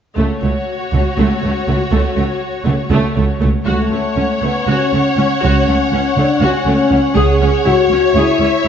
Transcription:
0.17 C#2 A3 F#4 C#5
0.42 C#2 A3
0.93 C#2 A3
1.18 C#2 A3
1.43 C#2 A3
1.67 C#2 A3
1.91 C#2 A3
2.16 C#2 A3
2.66 C#2 A3
2.91 C#2 A3
3.16 C#2 A3
3.41 C#2 A3
3.66 C#2 A3 F#4 C#5 F#5
3.92 C#2 A3
4.16 C#2 C#4
4.43 C#2 A3 B3
4.68 C#2 C#4 F#4
4.93 C#2 A3
5.18 C#2 C#4
5.42 C#2 C#4 F#4
5.67 C#2 A3
5.92 C#2 C#4
6.16 C#2 A3 D4
6.41 C#2 C#4 F#4
6.66 C#2 A3
6.91 C#2 C#4
7.15 C#2 G#4 C#5
7.40 C#2 C#4
7.65 C#2 E4 F#4
7.90 C#2 C#4
8.15 C#2 E4 G#4 E5
8.40 C#2 C#4

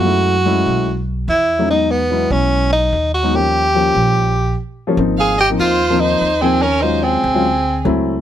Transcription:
Already playing: F#2 F#4
0.04 G#3 A3 C#4 E4
0.45 G#3 A3 C#4 E4
0.66 B1
1.28 E2 E4
1.58 F#3 A3 C#4 D#4
1.69 F#3 G#3 B3 D#4
1.91 B3
2.10 F#3 G#3 B3 E4
2.30 B1 C#4
2.72 D#4
2.92 D#2
3.14 F#4
3.23 F#3 G#3 B3 D#4
3.34 F3 G3 A#3 C#4 G4
3.74 F3 G3 A#3 C#4
3.95 A#1
4.87 F3 G3 A#3 C#4
4.97 G#1 F3 A#3 C4 D#4
5.18 G#4 F5
5.38 G4 D#5
5.49 F3 A#3 C4 D#4
5.59 D#2 F4 C5
5.90 F3 A#3 C4 D#4
6.00 D#4 C5
6.21 D#2
6.41 F3 A#3 C4 D#4 G#4
6.62 C#4 A#4
6.81 F#3 G#3 C#4 D#4 F4 C5
7.03 C4 G#4
7.24 D2
7.34 F#3 G#3 C#4 F4
7.85 C#2 F#3 A3 C4 E4

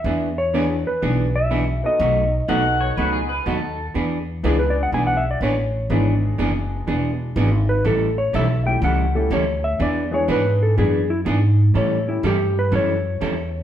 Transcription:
Already playing: E5
0.04 E2 E3 B3 D4 G#4
0.38 C#5
0.54 E3 B3 D4 E4 G#4
0.87 B4
1.02 B1 E3 B3 D4 G#4
1.36 E5
1.51 E3 B3 D4 G#4
1.84 B3 D#4 F#4 A4 D#5
2.00 B1 B2 F#3 A3 D#4 F#4
2.48 B1 B2 F#3 A3 B3 D#4 F#4 A4 F#5
2.81 C#5
2.97 C#2 B2 F#3 A3 D#4 F#4 B4
3.13 G#4
3.29 B4
3.46 D#2 B2 F#3 A3 D#4 F#4 A4
3.94 E2 E3 B3 D4 G#4
4.43 C#2 E3 G#3 B3 D4 E4 G#4
4.59 B4
4.70 D5
4.83 F#5
4.92 B1 E3 B3 D4 G#4 G#5
5.07 F#5
5.17 E5
5.31 D5
5.41 A1 E3 B3 D4 G#4 C#5
5.90 G#1 E3 G#3 B3 D4 E4 G#4
6.38 F#1 E3 B3 D4 G#4
6.87 E1 E3 B3 D4 G#4
7.36 G#1 E3 B3 D4 G#4
7.69 B4
7.84 A1 E3 G3 C#4 E4 A4
8.18 C#5
8.33 B1 E3 G3 C#4 E4 A4 E5
8.65 G3 A3 C#4 E4 G4 G5
8.82 C#2 E3 G3 C#4 E4 A4 F#5
9.15 G3 A3 C#4 E4 G4 A4
9.30 D2 E3 G3 C#4 E4 A4 C#5
9.64 E5
9.79 E2 E3 B3 D4 G#4 D5
10.11 G#3 B3 D4 E4 G#4 C#5
10.28 G#2 E3 B3 D4 G#4 B4
10.63 A4
10.77 F#2 E3 B3 D4 G#4
11.10 E4
11.25 G#2 E3 B3 D4 G#4
11.74 A2 E3 G3 C#4 E4 A4 C#5
12.07 G3 A3 C#4 E4 G4
12.23 G2 E3 G3 C#4 E4 G4 A4
12.59 B4
12.71 F#2 E3 G3 C#4 E4 A4
12.75 C#5
13.21 E2 E3 G3 C#4 E4 A4

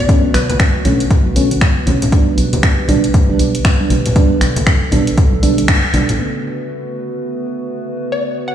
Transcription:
Already playing: A3 B3 F#4 B4
0.00 D5
0.09 D3 A3 B3 C#4, kick, closed hi-hat
0.34 B1 B4, finger snap, open hi-hat
0.50 B4, closed hi-hat, high conga
0.60 finger snap, kick, closed hi-hat
0.85 B1 D3 A3 B3 C#4, open hi-hat, low conga
1.00 closed hi-hat
1.11 kick, closed hi-hat, high conga
1.26 B1
1.36 B1 D3 A3 B3 C#4, open hi-hat
1.51 D3 A3 B3 C#4, closed hi-hat
1.61 finger snap, kick, closed hi-hat
1.87 B1 D3 A3 B3 C#4, open hi-hat, high conga
2.02 closed hi-hat, low conga
2.12 D3 G3 B3 D4 G4, kick, closed hi-hat
2.38 B1, open hi-hat
2.53 closed hi-hat, high conga
2.63 finger snap, kick, closed hi-hat
2.88 B1 D3 G3 B3 D4, open hi-hat, low conga
3.04 closed hi-hat
3.14 kick, closed hi-hat, high conga
3.29 B1 D3 G3 B3 D4
3.39 B1, open hi-hat
3.55 closed hi-hat
3.65 finger snap, kick, closed hi-hat
3.80 D3 G3 B3 D4
3.90 B1, open hi-hat, high conga
4.06 closed hi-hat, low conga
4.15 D3 G3 B3 D4 A4, kick, closed hi-hat
4.41 B1, finger snap, open hi-hat
4.56 closed hi-hat, high conga
4.67 finger snap, kick, closed hi-hat
4.92 B1 D3 G3 B3 D4, open hi-hat, low conga
5.07 closed hi-hat
5.18 kick, closed hi-hat, high conga
5.33 B1
5.43 B1 D3 G3 B3 D4, open hi-hat
5.58 D3 G3 B3 D4, closed hi-hat
5.68 finger snap, kick, closed hi-hat
5.93 B1 D3 G3 B3 D4, open hi-hat, high conga
6.09 closed hi-hat, low conga
6.18 C#3 D3 A3 B3 F#4 B4
6.45 open hi-hat
6.95 open hi-hat
7.46 open hi-hat
7.97 open hi-hat
8.12 D5
8.48 F#5, open hi-hat

